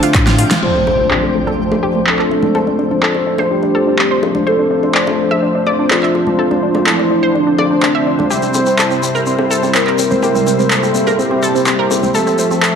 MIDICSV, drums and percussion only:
0, 0, Header, 1, 3, 480
1, 0, Start_track
1, 0, Key_signature, -1, "minor"
1, 0, Tempo, 480000
1, 627, Time_signature, 4, 2, 24, 8
1, 12753, End_track
2, 0, Start_track
2, 0, Title_t, "Shekere"
2, 8309, Note_on_c, 9, 82, 49
2, 8409, Note_off_c, 9, 82, 0
2, 8422, Note_on_c, 9, 82, 33
2, 8522, Note_off_c, 9, 82, 0
2, 8539, Note_on_c, 9, 82, 75
2, 8639, Note_off_c, 9, 82, 0
2, 8663, Note_on_c, 9, 82, 39
2, 8763, Note_off_c, 9, 82, 0
2, 8785, Note_on_c, 9, 82, 49
2, 8885, Note_off_c, 9, 82, 0
2, 8905, Note_on_c, 9, 82, 31
2, 9005, Note_off_c, 9, 82, 0
2, 9030, Note_on_c, 9, 82, 74
2, 9130, Note_off_c, 9, 82, 0
2, 9151, Note_on_c, 9, 82, 32
2, 9251, Note_off_c, 9, 82, 0
2, 9263, Note_on_c, 9, 82, 43
2, 9363, Note_off_c, 9, 82, 0
2, 9513, Note_on_c, 9, 82, 87
2, 9613, Note_off_c, 9, 82, 0
2, 9631, Note_on_c, 9, 82, 35
2, 9731, Note_off_c, 9, 82, 0
2, 9745, Note_on_c, 9, 82, 49
2, 9845, Note_off_c, 9, 82, 0
2, 9987, Note_on_c, 9, 82, 78
2, 10087, Note_off_c, 9, 82, 0
2, 10107, Note_on_c, 9, 82, 35
2, 10207, Note_off_c, 9, 82, 0
2, 10226, Note_on_c, 9, 82, 47
2, 10326, Note_off_c, 9, 82, 0
2, 10354, Note_on_c, 9, 82, 32
2, 10454, Note_off_c, 9, 82, 0
2, 10469, Note_on_c, 9, 82, 76
2, 10569, Note_off_c, 9, 82, 0
2, 10592, Note_on_c, 9, 82, 34
2, 10692, Note_off_c, 9, 82, 0
2, 10710, Note_on_c, 9, 82, 49
2, 10810, Note_off_c, 9, 82, 0
2, 10832, Note_on_c, 9, 82, 29
2, 10932, Note_off_c, 9, 82, 0
2, 10945, Note_on_c, 9, 82, 74
2, 11045, Note_off_c, 9, 82, 0
2, 11070, Note_on_c, 9, 82, 33
2, 11170, Note_off_c, 9, 82, 0
2, 11193, Note_on_c, 9, 82, 45
2, 11293, Note_off_c, 9, 82, 0
2, 11428, Note_on_c, 9, 82, 76
2, 11528, Note_off_c, 9, 82, 0
2, 11557, Note_on_c, 9, 82, 34
2, 11657, Note_off_c, 9, 82, 0
2, 11660, Note_on_c, 9, 82, 48
2, 11760, Note_off_c, 9, 82, 0
2, 11911, Note_on_c, 9, 82, 81
2, 12011, Note_off_c, 9, 82, 0
2, 12030, Note_on_c, 9, 82, 37
2, 12130, Note_off_c, 9, 82, 0
2, 12147, Note_on_c, 9, 82, 51
2, 12247, Note_off_c, 9, 82, 0
2, 12270, Note_on_c, 9, 82, 29
2, 12370, Note_off_c, 9, 82, 0
2, 12382, Note_on_c, 9, 82, 79
2, 12482, Note_off_c, 9, 82, 0
2, 12512, Note_on_c, 9, 82, 33
2, 12612, Note_off_c, 9, 82, 0
2, 12634, Note_on_c, 9, 82, 48
2, 12734, Note_off_c, 9, 82, 0
2, 12753, End_track
3, 0, Start_track
3, 0, Title_t, "Drums"
3, 28, Note_on_c, 9, 42, 57
3, 128, Note_off_c, 9, 42, 0
3, 144, Note_on_c, 9, 42, 67
3, 145, Note_on_c, 9, 36, 115
3, 145, Note_on_c, 9, 39, 118
3, 244, Note_off_c, 9, 42, 0
3, 245, Note_off_c, 9, 36, 0
3, 245, Note_off_c, 9, 39, 0
3, 269, Note_on_c, 9, 38, 72
3, 269, Note_on_c, 9, 42, 38
3, 369, Note_off_c, 9, 38, 0
3, 369, Note_off_c, 9, 42, 0
3, 385, Note_on_c, 9, 46, 86
3, 485, Note_off_c, 9, 46, 0
3, 508, Note_on_c, 9, 38, 95
3, 508, Note_on_c, 9, 42, 57
3, 514, Note_on_c, 9, 63, 104
3, 608, Note_off_c, 9, 38, 0
3, 608, Note_off_c, 9, 42, 0
3, 614, Note_off_c, 9, 63, 0
3, 624, Note_on_c, 9, 60, 40
3, 625, Note_on_c, 9, 49, 75
3, 724, Note_off_c, 9, 60, 0
3, 725, Note_off_c, 9, 49, 0
3, 871, Note_on_c, 9, 60, 76
3, 971, Note_off_c, 9, 60, 0
3, 1104, Note_on_c, 9, 60, 36
3, 1107, Note_on_c, 9, 39, 111
3, 1204, Note_off_c, 9, 60, 0
3, 1207, Note_off_c, 9, 39, 0
3, 1474, Note_on_c, 9, 60, 37
3, 1574, Note_off_c, 9, 60, 0
3, 1716, Note_on_c, 9, 60, 72
3, 1816, Note_off_c, 9, 60, 0
3, 1950, Note_on_c, 9, 60, 34
3, 2050, Note_off_c, 9, 60, 0
3, 2067, Note_on_c, 9, 39, 105
3, 2167, Note_off_c, 9, 39, 0
3, 2190, Note_on_c, 9, 39, 34
3, 2290, Note_off_c, 9, 39, 0
3, 2314, Note_on_c, 9, 60, 39
3, 2414, Note_off_c, 9, 60, 0
3, 2425, Note_on_c, 9, 63, 90
3, 2525, Note_off_c, 9, 63, 0
3, 2549, Note_on_c, 9, 60, 76
3, 2649, Note_off_c, 9, 60, 0
3, 2672, Note_on_c, 9, 63, 52
3, 2772, Note_off_c, 9, 63, 0
3, 2790, Note_on_c, 9, 60, 33
3, 2890, Note_off_c, 9, 60, 0
3, 2912, Note_on_c, 9, 63, 51
3, 3012, Note_off_c, 9, 63, 0
3, 3028, Note_on_c, 9, 39, 110
3, 3128, Note_off_c, 9, 39, 0
3, 3146, Note_on_c, 9, 60, 37
3, 3246, Note_off_c, 9, 60, 0
3, 3384, Note_on_c, 9, 60, 72
3, 3484, Note_off_c, 9, 60, 0
3, 3626, Note_on_c, 9, 60, 38
3, 3726, Note_off_c, 9, 60, 0
3, 3987, Note_on_c, 9, 39, 110
3, 3993, Note_on_c, 9, 60, 35
3, 4087, Note_off_c, 9, 39, 0
3, 4093, Note_off_c, 9, 60, 0
3, 4229, Note_on_c, 9, 60, 66
3, 4329, Note_off_c, 9, 60, 0
3, 4348, Note_on_c, 9, 63, 83
3, 4448, Note_off_c, 9, 63, 0
3, 4471, Note_on_c, 9, 60, 37
3, 4571, Note_off_c, 9, 60, 0
3, 4830, Note_on_c, 9, 60, 37
3, 4930, Note_off_c, 9, 60, 0
3, 4946, Note_on_c, 9, 39, 110
3, 5046, Note_off_c, 9, 39, 0
3, 5072, Note_on_c, 9, 60, 70
3, 5172, Note_off_c, 9, 60, 0
3, 5309, Note_on_c, 9, 60, 36
3, 5409, Note_off_c, 9, 60, 0
3, 5664, Note_on_c, 9, 60, 38
3, 5764, Note_off_c, 9, 60, 0
3, 5906, Note_on_c, 9, 39, 105
3, 5908, Note_on_c, 9, 60, 75
3, 6006, Note_off_c, 9, 39, 0
3, 6008, Note_off_c, 9, 60, 0
3, 6029, Note_on_c, 9, 39, 33
3, 6129, Note_off_c, 9, 39, 0
3, 6150, Note_on_c, 9, 60, 36
3, 6250, Note_off_c, 9, 60, 0
3, 6267, Note_on_c, 9, 63, 75
3, 6367, Note_off_c, 9, 63, 0
3, 6510, Note_on_c, 9, 63, 57
3, 6511, Note_on_c, 9, 60, 36
3, 6610, Note_off_c, 9, 63, 0
3, 6611, Note_off_c, 9, 60, 0
3, 6746, Note_on_c, 9, 60, 68
3, 6752, Note_on_c, 9, 63, 50
3, 6846, Note_off_c, 9, 60, 0
3, 6852, Note_off_c, 9, 63, 0
3, 6866, Note_on_c, 9, 39, 101
3, 6966, Note_off_c, 9, 39, 0
3, 6994, Note_on_c, 9, 60, 34
3, 7094, Note_off_c, 9, 60, 0
3, 7354, Note_on_c, 9, 60, 33
3, 7454, Note_off_c, 9, 60, 0
3, 7585, Note_on_c, 9, 60, 70
3, 7685, Note_off_c, 9, 60, 0
3, 7826, Note_on_c, 9, 39, 100
3, 7827, Note_on_c, 9, 60, 34
3, 7926, Note_off_c, 9, 39, 0
3, 7927, Note_off_c, 9, 60, 0
3, 8188, Note_on_c, 9, 60, 36
3, 8197, Note_on_c, 9, 63, 81
3, 8288, Note_off_c, 9, 60, 0
3, 8297, Note_off_c, 9, 63, 0
3, 8305, Note_on_c, 9, 60, 35
3, 8405, Note_off_c, 9, 60, 0
3, 8552, Note_on_c, 9, 60, 60
3, 8652, Note_off_c, 9, 60, 0
3, 8786, Note_on_c, 9, 39, 105
3, 8789, Note_on_c, 9, 60, 34
3, 8886, Note_off_c, 9, 39, 0
3, 8889, Note_off_c, 9, 60, 0
3, 9152, Note_on_c, 9, 60, 33
3, 9252, Note_off_c, 9, 60, 0
3, 9386, Note_on_c, 9, 60, 71
3, 9486, Note_off_c, 9, 60, 0
3, 9641, Note_on_c, 9, 60, 34
3, 9741, Note_off_c, 9, 60, 0
3, 9746, Note_on_c, 9, 39, 97
3, 9846, Note_off_c, 9, 39, 0
3, 9870, Note_on_c, 9, 39, 32
3, 9970, Note_off_c, 9, 39, 0
3, 9990, Note_on_c, 9, 60, 36
3, 10090, Note_off_c, 9, 60, 0
3, 10116, Note_on_c, 9, 63, 87
3, 10216, Note_off_c, 9, 63, 0
3, 10225, Note_on_c, 9, 60, 66
3, 10325, Note_off_c, 9, 60, 0
3, 10356, Note_on_c, 9, 63, 60
3, 10456, Note_off_c, 9, 63, 0
3, 10473, Note_on_c, 9, 60, 29
3, 10573, Note_off_c, 9, 60, 0
3, 10592, Note_on_c, 9, 63, 54
3, 10692, Note_off_c, 9, 63, 0
3, 10706, Note_on_c, 9, 39, 105
3, 10806, Note_off_c, 9, 39, 0
3, 10834, Note_on_c, 9, 60, 31
3, 10934, Note_off_c, 9, 60, 0
3, 11073, Note_on_c, 9, 60, 67
3, 11173, Note_off_c, 9, 60, 0
3, 11309, Note_on_c, 9, 60, 34
3, 11409, Note_off_c, 9, 60, 0
3, 11660, Note_on_c, 9, 60, 31
3, 11665, Note_on_c, 9, 39, 100
3, 11760, Note_off_c, 9, 60, 0
3, 11765, Note_off_c, 9, 39, 0
3, 11911, Note_on_c, 9, 60, 64
3, 12011, Note_off_c, 9, 60, 0
3, 12032, Note_on_c, 9, 63, 86
3, 12132, Note_off_c, 9, 63, 0
3, 12142, Note_on_c, 9, 60, 33
3, 12242, Note_off_c, 9, 60, 0
3, 12505, Note_on_c, 9, 60, 34
3, 12605, Note_off_c, 9, 60, 0
3, 12626, Note_on_c, 9, 39, 107
3, 12726, Note_off_c, 9, 39, 0
3, 12753, End_track
0, 0, End_of_file